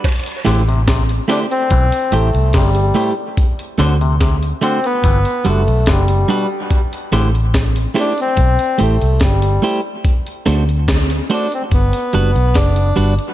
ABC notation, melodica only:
X:1
M:4/4
L:1/16
Q:1/4=72
K:Ador
V:1 name="Melodica"
z6 D C3 A,2 G,3 z | z6 C B,3 A,2 G,3 z | z6 D C3 A,2 G,3 z | z6 D C B,4 D3 z |]